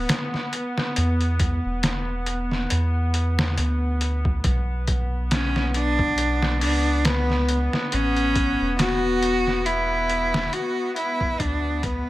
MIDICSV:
0, 0, Header, 1, 5, 480
1, 0, Start_track
1, 0, Key_signature, 2, "minor"
1, 0, Tempo, 869565
1, 532, Time_signature, 4, 2, 24, 8
1, 6676, End_track
2, 0, Start_track
2, 0, Title_t, "Cello"
2, 0, Program_c, 0, 42
2, 2937, Note_on_c, 0, 61, 93
2, 3158, Note_off_c, 0, 61, 0
2, 3176, Note_on_c, 0, 62, 106
2, 3632, Note_off_c, 0, 62, 0
2, 3656, Note_on_c, 0, 62, 101
2, 3896, Note_on_c, 0, 59, 103
2, 3905, Note_off_c, 0, 62, 0
2, 4268, Note_off_c, 0, 59, 0
2, 4372, Note_on_c, 0, 61, 114
2, 4830, Note_off_c, 0, 61, 0
2, 4854, Note_on_c, 0, 66, 122
2, 5333, Note_on_c, 0, 64, 110
2, 5342, Note_off_c, 0, 66, 0
2, 5814, Note_on_c, 0, 66, 105
2, 5822, Note_off_c, 0, 64, 0
2, 6051, Note_off_c, 0, 66, 0
2, 6054, Note_on_c, 0, 64, 99
2, 6293, Note_on_c, 0, 62, 104
2, 6301, Note_off_c, 0, 64, 0
2, 6532, Note_on_c, 0, 59, 106
2, 6540, Note_off_c, 0, 62, 0
2, 6676, Note_off_c, 0, 59, 0
2, 6676, End_track
3, 0, Start_track
3, 0, Title_t, "String section"
3, 0, Program_c, 1, 48
3, 0, Note_on_c, 1, 59, 72
3, 2448, Note_off_c, 1, 59, 0
3, 2455, Note_on_c, 1, 59, 76
3, 6676, Note_off_c, 1, 59, 0
3, 6676, End_track
4, 0, Start_track
4, 0, Title_t, "Sub bass"
4, 0, Program_c, 2, 38
4, 538, Note_on_c, 2, 40, 102
4, 883, Note_off_c, 2, 40, 0
4, 913, Note_on_c, 2, 28, 73
4, 1475, Note_off_c, 2, 28, 0
4, 1499, Note_on_c, 2, 40, 103
4, 1974, Note_off_c, 2, 40, 0
4, 1977, Note_on_c, 2, 38, 85
4, 2434, Note_off_c, 2, 38, 0
4, 2455, Note_on_c, 2, 35, 98
4, 3658, Note_on_c, 2, 37, 93
4, 3666, Note_off_c, 2, 35, 0
4, 4243, Note_off_c, 2, 37, 0
4, 4380, Note_on_c, 2, 33, 101
4, 4724, Note_off_c, 2, 33, 0
4, 4754, Note_on_c, 2, 28, 82
4, 5795, Note_off_c, 2, 28, 0
4, 6294, Note_on_c, 2, 38, 106
4, 6641, Note_off_c, 2, 38, 0
4, 6676, End_track
5, 0, Start_track
5, 0, Title_t, "Drums"
5, 50, Note_on_c, 9, 42, 93
5, 52, Note_on_c, 9, 38, 117
5, 105, Note_off_c, 9, 42, 0
5, 108, Note_off_c, 9, 38, 0
5, 187, Note_on_c, 9, 38, 41
5, 242, Note_off_c, 9, 38, 0
5, 291, Note_on_c, 9, 42, 74
5, 346, Note_off_c, 9, 42, 0
5, 428, Note_on_c, 9, 38, 60
5, 483, Note_off_c, 9, 38, 0
5, 532, Note_on_c, 9, 42, 91
5, 587, Note_off_c, 9, 42, 0
5, 666, Note_on_c, 9, 42, 43
5, 721, Note_off_c, 9, 42, 0
5, 770, Note_on_c, 9, 42, 67
5, 771, Note_on_c, 9, 36, 91
5, 825, Note_off_c, 9, 42, 0
5, 826, Note_off_c, 9, 36, 0
5, 1011, Note_on_c, 9, 42, 74
5, 1013, Note_on_c, 9, 38, 101
5, 1066, Note_off_c, 9, 42, 0
5, 1069, Note_off_c, 9, 38, 0
5, 1250, Note_on_c, 9, 42, 72
5, 1305, Note_off_c, 9, 42, 0
5, 1388, Note_on_c, 9, 38, 37
5, 1443, Note_off_c, 9, 38, 0
5, 1492, Note_on_c, 9, 42, 89
5, 1547, Note_off_c, 9, 42, 0
5, 1733, Note_on_c, 9, 42, 66
5, 1788, Note_off_c, 9, 42, 0
5, 1870, Note_on_c, 9, 38, 127
5, 1925, Note_off_c, 9, 38, 0
5, 1974, Note_on_c, 9, 42, 88
5, 2029, Note_off_c, 9, 42, 0
5, 2213, Note_on_c, 9, 42, 71
5, 2268, Note_off_c, 9, 42, 0
5, 2346, Note_on_c, 9, 36, 98
5, 2402, Note_off_c, 9, 36, 0
5, 2451, Note_on_c, 9, 42, 88
5, 2452, Note_on_c, 9, 36, 117
5, 2506, Note_off_c, 9, 42, 0
5, 2507, Note_off_c, 9, 36, 0
5, 2691, Note_on_c, 9, 42, 67
5, 2692, Note_on_c, 9, 36, 90
5, 2746, Note_off_c, 9, 42, 0
5, 2747, Note_off_c, 9, 36, 0
5, 2932, Note_on_c, 9, 42, 78
5, 2934, Note_on_c, 9, 38, 100
5, 2987, Note_off_c, 9, 42, 0
5, 2990, Note_off_c, 9, 38, 0
5, 3069, Note_on_c, 9, 38, 51
5, 3124, Note_off_c, 9, 38, 0
5, 3171, Note_on_c, 9, 42, 68
5, 3226, Note_off_c, 9, 42, 0
5, 3306, Note_on_c, 9, 36, 93
5, 3361, Note_off_c, 9, 36, 0
5, 3410, Note_on_c, 9, 42, 84
5, 3465, Note_off_c, 9, 42, 0
5, 3547, Note_on_c, 9, 38, 58
5, 3602, Note_off_c, 9, 38, 0
5, 3651, Note_on_c, 9, 46, 79
5, 3706, Note_off_c, 9, 46, 0
5, 3890, Note_on_c, 9, 42, 87
5, 3893, Note_on_c, 9, 38, 115
5, 3946, Note_off_c, 9, 42, 0
5, 3948, Note_off_c, 9, 38, 0
5, 4028, Note_on_c, 9, 38, 39
5, 4084, Note_off_c, 9, 38, 0
5, 4132, Note_on_c, 9, 42, 72
5, 4187, Note_off_c, 9, 42, 0
5, 4269, Note_on_c, 9, 38, 59
5, 4324, Note_off_c, 9, 38, 0
5, 4373, Note_on_c, 9, 42, 91
5, 4428, Note_off_c, 9, 42, 0
5, 4507, Note_on_c, 9, 42, 43
5, 4562, Note_off_c, 9, 42, 0
5, 4612, Note_on_c, 9, 36, 86
5, 4612, Note_on_c, 9, 42, 62
5, 4667, Note_off_c, 9, 36, 0
5, 4667, Note_off_c, 9, 42, 0
5, 4852, Note_on_c, 9, 42, 78
5, 4855, Note_on_c, 9, 38, 100
5, 4907, Note_off_c, 9, 42, 0
5, 4910, Note_off_c, 9, 38, 0
5, 5092, Note_on_c, 9, 42, 68
5, 5148, Note_off_c, 9, 42, 0
5, 5229, Note_on_c, 9, 38, 37
5, 5284, Note_off_c, 9, 38, 0
5, 5332, Note_on_c, 9, 42, 88
5, 5387, Note_off_c, 9, 42, 0
5, 5573, Note_on_c, 9, 42, 65
5, 5628, Note_off_c, 9, 42, 0
5, 5709, Note_on_c, 9, 38, 121
5, 5764, Note_off_c, 9, 38, 0
5, 5812, Note_on_c, 9, 42, 88
5, 5867, Note_off_c, 9, 42, 0
5, 6052, Note_on_c, 9, 42, 71
5, 6107, Note_off_c, 9, 42, 0
5, 6186, Note_on_c, 9, 36, 103
5, 6241, Note_off_c, 9, 36, 0
5, 6292, Note_on_c, 9, 36, 116
5, 6292, Note_on_c, 9, 42, 85
5, 6347, Note_off_c, 9, 36, 0
5, 6347, Note_off_c, 9, 42, 0
5, 6531, Note_on_c, 9, 36, 101
5, 6531, Note_on_c, 9, 42, 71
5, 6586, Note_off_c, 9, 42, 0
5, 6587, Note_off_c, 9, 36, 0
5, 6676, End_track
0, 0, End_of_file